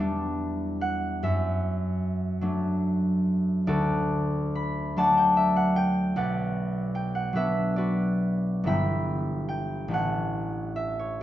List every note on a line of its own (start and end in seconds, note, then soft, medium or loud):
0.00 1.26 E2 medium
0.00 1.26 G3 medium
0.00 1.26 B3 medium
0.00 2.41 D4 medium
0.00 1.26 B4 medium
0.00 3.48 D5 medium
0.00 1.22 E5 medium
0.00 1.26 G5 medium
0.00 1.26 B5 medium
0.81 1.51 F#5 medium
1.23 3.71 F#2 medium
1.23 3.71 E5 medium
2.41 4.96 F#3 medium
2.41 4.96 A3 medium
2.41 4.96 D4 medium
3.67 6.18 D2 medium
3.67 7.58 F#4 medium
3.67 6.19 A4 medium
3.67 4.97 D5 medium
4.55 5.24 B5 medium
4.97 7.32 F#3 medium
4.97 6.19 A3 medium
4.97 7.34 D4 medium
4.97 6.16 D5 medium
4.97 5.55 F#5 medium
4.97 6.19 A5 medium
5.17 5.50 G5 medium
5.37 5.70 E5 medium
5.56 5.90 F#5 medium
5.76 6.43 G5 medium
6.16 8.70 B1 medium
6.16 7.34 B4 medium
6.16 7.75 D5 medium
6.16 7.14 F#5 medium
6.95 7.29 G5 medium
7.15 7.50 F#5 medium
7.33 8.69 F#3 medium
7.33 8.65 B3 medium
7.33 8.69 D4 medium
7.33 7.76 B4 medium
7.33 8.08 E5 medium
7.76 8.70 F#4 medium
7.76 9.94 B4 medium
7.76 8.69 D5 medium
8.64 9.94 G1 medium
8.64 9.90 E3 soft
8.64 9.94 B3 soft
8.64 11.23 E4 soft
8.64 10.75 E5 medium
8.64 9.47 G5 medium
8.64 9.94 B5 medium
9.49 9.94 G5 medium
9.88 11.23 A1 medium
9.88 11.23 E3 soft
9.88 11.23 A3 soft
9.88 11.23 C#4 soft
9.94 11.23 F#5 medium
10.76 11.23 E5 medium
10.99 11.23 C#5 medium